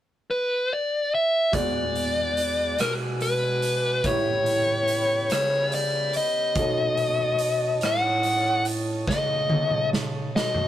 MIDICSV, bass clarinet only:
0, 0, Header, 1, 2, 480
1, 0, Start_track
1, 0, Key_signature, 4, "major"
1, 0, Tempo, 838809
1, 876, Time_signature, 12, 3, 24, 8
1, 6110, End_track
2, 0, Start_track
2, 0, Title_t, "Bass clarinet"
2, 0, Program_c, 0, 71
2, 880, Note_on_c, 0, 40, 56
2, 1577, Note_off_c, 0, 40, 0
2, 1595, Note_on_c, 0, 47, 62
2, 2295, Note_off_c, 0, 47, 0
2, 2316, Note_on_c, 0, 45, 66
2, 3015, Note_off_c, 0, 45, 0
2, 3039, Note_on_c, 0, 49, 66
2, 3586, Note_off_c, 0, 49, 0
2, 3752, Note_on_c, 0, 47, 64
2, 4454, Note_off_c, 0, 47, 0
2, 4472, Note_on_c, 0, 45, 72
2, 5174, Note_off_c, 0, 45, 0
2, 5193, Note_on_c, 0, 49, 71
2, 5895, Note_off_c, 0, 49, 0
2, 5915, Note_on_c, 0, 47, 65
2, 6110, Note_off_c, 0, 47, 0
2, 6110, End_track
0, 0, End_of_file